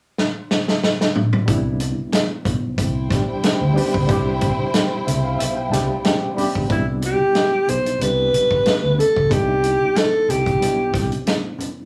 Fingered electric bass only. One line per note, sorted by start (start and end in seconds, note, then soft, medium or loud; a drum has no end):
1.48 1.92 C2 medium
1.99 muted fingered electric bass stroke soft
2.46 2.74 B1 medium
2.78 3.07 C2 medium
3.11 3.26 B1 medium
3.44 muted fingered electric bass stroke soft
3.61 3.74 D2 medium
3.95 4.07 C#2 medium
4.09 4.53 C2 medium
4.60 muted fingered electric bass stroke soft
5.07 5.35 C2 medium
5.40 5.68 B1 medium
5.73 5.88 C2 medium
6.70 7.14 C2 medium
7.21 muted fingered electric bass stroke soft
7.68 7.96 B1 medium
8.01 8.29 C2 medium
8.33 8.49 B1 medium
8.66 muted fingered electric bass stroke soft
8.84 8.97 D2 medium
9.17 9.29 C#2 medium
9.31 9.75 C2 medium
9.82 muted fingered electric bass stroke soft
10.30 10.58 C2 medium
10.62 10.90 B1 medium
10.94 11.09 C2 medium